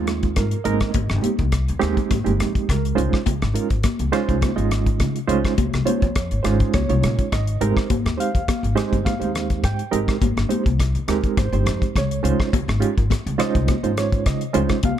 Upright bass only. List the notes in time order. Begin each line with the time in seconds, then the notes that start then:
Already playing: D#2
0.37 G#2
0.65 G#1
0.94 G#1
1.11 G1
1.24 muted upright bass stroke
1.39 C2
1.69 D#2
1.82 D#2
1.98 muted upright bass stroke
2.11 G#1
2.26 G1
2.40 F2
2.69 C#2
2.97 C#2
3.13 muted upright bass stroke
3.26 C#2
3.42 G#1
3.70 G#1
4.00 C#2
4.29 C2
4.57 G#1
5.00 C#3
5.28 C#2
5.58 C#2
5.74 C2
5.87 muted upright bass stroke
6.02 F2
6.32 G#1
6.45 G#1
6.60 muted upright bass stroke
6.74 C#2
6.90 C2
7.04 A#2
7.32 G#1
7.61 G#1
7.91 G#1
8.05 D#2
8.35 D#2
8.63 G#1
8.93 G1
9.21 D#2
9.64 G#2
9.93 G#1
10.22 G#1
10.37 G1
10.50 muted upright bass stroke
10.66 C2
10.95 D#2
11.08 D#2
11.24 muted upright bass stroke
11.38 G#1
11.52 G1
11.66 F2
11.96 C#2
12.24 C#2
12.53 C#2
12.68 G#1
12.98 G#1
13.26 C#2
13.55 C2
13.83 G#1
14.26 C#3
14.55 C#2
14.84 C#2